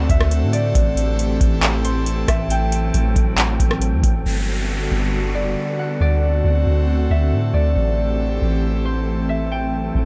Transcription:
Already playing: D3 A3 C4 D4 F#4 A4 C5 D5 F#5
0.09 D2 E5, kick, closed hi-hat
0.21 cross-stick
0.31 closed hi-hat
0.42 A2
0.53 D5, closed hi-hat
0.75 A1 E3 C4 G4 A4 G5, kick, closed hi-hat
0.97 closed hi-hat
1.19 closed hi-hat
1.41 A1, kick, closed hi-hat
1.63 clap, closed hi-hat
1.85 C5, closed hi-hat
2.06 closed hi-hat
2.28 A1 E5, kick, cross-stick, closed hi-hat
2.50 F#3 G5, closed hi-hat
2.72 closed hi-hat
2.94 A1, closed hi-hat
3.16 A1, kick, closed hi-hat
3.38 clap, closed hi-hat
3.60 A1, kick, closed hi-hat
3.71 cross-stick
3.82 closed hi-hat
3.93 E2
4.03 A1, kick, closed hi-hat
4.25 G1 D3 G3 B3 F#4 A4 F#5, downlifter
4.91 G1
5.35 F#1 D5
5.79 F#5
6.00 D2 A3 C4 D4 F#4 C5 D5
6.44 D2
6.66 D2
7.10 D2 E5
7.32 A2
7.54 D2 D5
7.76 A1 E3 C4 G4 A4 G5
8.42 A1
8.85 C5
9.29 E5
9.51 F#3 G5
9.95 A1

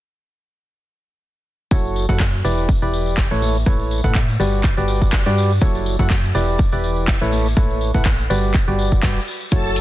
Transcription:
1.71 F#1 F#3 E4 F#4 A4 C#5, kick, tambourine, high conga
1.85 tambourine
1.96 tambourine
2.09 F#2 F#3 E4 F#4 A4 F#5, kick, tambourine, high conga
2.20 kick, clap, tambourine
2.33 tambourine
2.44 E1 E3 E4 G4 B4 D5, tambourine
2.58 tambourine
2.69 kick, tambourine
2.82 E1 E3 E4 G4 B4 D5, tambourine
2.94 tambourine
3.06 tambourine
3.17 kick, clap, tambourine
3.31 A1 A3 E4 A4 B4 C#5, tambourine
3.42 tambourine, high conga
3.55 tambourine
3.66 A1 A3 E4 A4 B4 C#5, kick, tambourine, high conga
3.80 tambourine
3.91 tambourine
4.04 A2 A3 E4 A4 B4 F#5, kick, tambourine, high conga
4.15 kick, clap, tambourine
4.28 tambourine
4.40 G1 G3 F#4 G4 B4 D5, tambourine
4.53 tambourine
4.63 kick, clap, tambourine
4.77 G1 G3 F#4 G4 B4 D5, tambourine
4.88 tambourine
5.02 kick, tambourine
5.12 kick, clap, tambourine
5.26 G2 G3 F#4 G4 B4 D5, tambourine
5.38 tambourine
5.51 tambourine
5.61 F#1 F#3 E4 F#4 A4 C#5, kick, tambourine, high conga
5.75 tambourine
5.86 tambourine
5.99 F#2 F#3 E4 F#4 A4 F#5, kick, tambourine, high conga
6.10 kick, clap, tambourine
6.23 tambourine
6.35 E1 E3 E4 G4 B4 D5, tambourine
6.48 tambourine
6.58 kick, tambourine
6.72 E1 E3 E4 G4 B4 D5, tambourine
6.84 tambourine
6.96 tambourine
7.08 kick, clap, tambourine
7.21 A1 A3 E4 A4 B4 C#5, tambourine
7.32 tambourine, high conga
7.46 tambourine
7.57 A1 A3 E4 A4 B4 C#5, kick, tambourine, high conga
7.70 tambourine
7.81 tambourine
7.94 A1 A3 E4 A4 B4 F#5, kick, tambourine, high conga
8.05 kick, clap, tambourine
8.19 tambourine
8.30 G1 G3 F#4 G4 B4 D5, tambourine
8.43 tambourine
8.54 kick, clap, tambourine
8.68 G1 G3 F#4 G4 B4 D5, tambourine
8.79 tambourine
8.91 kick, tambourine
9.03 G1 G3 F#4 G4 B4 D5, kick, clap, tambourine
9.17 tambourine
9.28 tambourine
9.41 tambourine
9.51 F#1 F#3 E4 F#4 A4 C#5 A5, kick, closed hi-hat, tambourine, high conga
9.66 tambourine
9.76 open hi-hat, tambourine

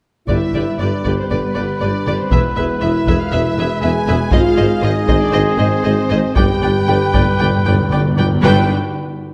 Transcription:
0.26 G1 G2 D3 G3 E4 G4 B4 D5 E5, taiko
0.54 G1 G2 G4 B4 D5
0.79 G1 G2 D4 G4 B4 D5
1.04 G1 G2 G4 B4 D5, taiko
1.18 C4 C5
1.28 G1 G2 B3 G4 B4 D5
1.55 G1 G2 G4 B4 D5
1.79 G1 G2 D4 G4 B4 D5
2.06 G1 G2 G4 B4 D5
2.18 C4 C5
2.31 E1 E2 E3 G#3 B3 G#4 B4 E5, taiko
2.56 E1 E2 G#4 B4 E5
2.79 E1 E2 E4 G#4 B4 E5
2.83 E1
3.06 E1 E2 G#4 B4 E5, taiko
3.20 F4 F5
3.30 E1 E2 E4 G#4 B4 E5
3.56 E1 E2 G#4 B4 E5
3.81 E1 E2 G#4 B4 E5 G#5
4.07 E1 E2 G#4 B4 E5
4.31 G#1 G#2 D#3 F4 G#4 C5 D#5 F5, taiko
4.56 G#1 G#2 G#4 C5 D#5
4.81 G#1 G#2 D#4 G#4 C5 D#5
5.07 G#1 G#2 G#4 C5 D#5, taiko
5.21 D4 D5
5.31 G#1 G#2 C4 G#4 C5 D#5
5.57 G#1 G#2 G#4 C5 D#5
5.83 G#1 G#2 G#4 C5 D#5
6.10 G#1 G#2 G#4 C5 D#5
6.36 G1 G2 D3 G3 G4 B4 D5 G5, taiko
6.43 G2
6.50 G2
6.59 G2 B4 D5 G5
6.63 G1 G2
6.73 G2
6.81 G2
6.87 G1 G2 B4 D5 G5
6.96 G2
7.05 G2
7.12 G1 G2 B4 D5 G5, taiko
7.20 G2
7.27 G2
7.35 G2 G5
7.40 G1 G2 B4 D5
7.51 G2
7.58 G2
7.65 G1 G2 B4 D5 G5
7.73 G2
7.81 G2
7.89 G1 G2 B4 D5 G5
7.97 G2
8.04 G2
8.11 G2
8.17 G1 G2 B4 D5 G5
8.28 G2
8.35 G2
8.43 G1 G2 D3 G3 D4 G4 B4 G5

